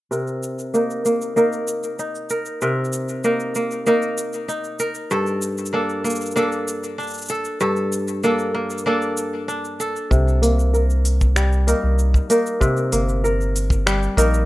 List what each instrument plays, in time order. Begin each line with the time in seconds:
0.11 kora C3 A#4, shaker
0.27 shaker
0.43 shaker
0.59 shaker
0.74 kora A#3 D#4 A#4, shaker
0.90 shaker
1.05 kora A#3, shaker
1.22 shaker
1.36 kora A#3 D#4 A#4, shaker
1.53 shaker
1.68 shaker
1.83 shaker
1.99 kora D#4, shaker
2.15 shaker
2.30 kora A#4, shaker
2.46 shaker
2.62 kora C3 A#4, shaker
2.85 shaker
2.93 shaker
3.09 shaker
3.24 kora A#3 D#4 A#4, shaker
3.40 shaker
3.55 kora A#3, shaker
3.71 shaker
3.86 kora A#3 D#4 A#4, shaker
4.02 shaker
4.18 shaker
4.33 shaker
4.48 kora D#4, shaker
4.64 shaker
4.79 kora A#4, shaker
4.95 shaker
5.11 kora G2 A4, shaker
5.26 shaker
5.42 shaker
5.58 shaker
5.66 shaker
5.73 kora A#3 D4 A4
5.89 shaker
6.04 kora A#3, shaker
6.10 shaker
6.15 shaker
6.21 shaker
6.26 shaker
6.31 shaker
6.36 kora A#3 D4 A4, shaker
6.52 shaker
6.68 shaker
6.84 shaker
6.98 kora D4, shaker
7.03 shaker
7.07 shaker
7.10 shaker
7.14 shaker
7.18 shaker
7.22 shaker
7.24 shaker
7.29 kora A4, shaker
7.45 shaker
7.61 kora G2 A4, shaker
7.76 shaker
7.92 shaker
8.08 shaker
8.23 kora A#3 D4 A4, shaker
8.39 shaker
8.54 kora A#3
8.70 shaker
8.78 shaker
8.86 kora A#3 D4 A4
9.02 shaker
9.17 shaker
9.48 kora D4, shaker
9.65 shaker
9.80 kora A4, shaker
9.96 shaker
10.11 sub bass C2, kora C3, kick, shaker
10.28 shaker
10.42 kora A#3, open hi-hat, shaker
10.59 shaker
10.74 kora A#4, shaker
10.90 shaker
11.05 open hi-hat, shaker
11.21 kick, shaker
11.36 kora G3, finger snap, shaker
11.53 shaker
11.67 kora A#3 D#4 A#4, open hi-hat, shaker
11.83 sub bass C2
11.99 shaker
12.14 kick, shaker
12.30 kora A#3 D#4 A#4, open hi-hat, shaker
12.46 shaker
12.61 kora C3, kick, shaker
12.77 shaker
12.92 sub bass G1, kora A#3, open hi-hat, shaker
13.09 shaker
13.24 kora A#4, shaker
13.41 shaker
13.56 open hi-hat, shaker
13.70 kick, shaker
13.86 kora G3, finger snap, shaker
14.03 shaker
14.17 sub bass A#1, kora A#3 D#4 A#4, kick, open hi-hat, shaker
14.34 shaker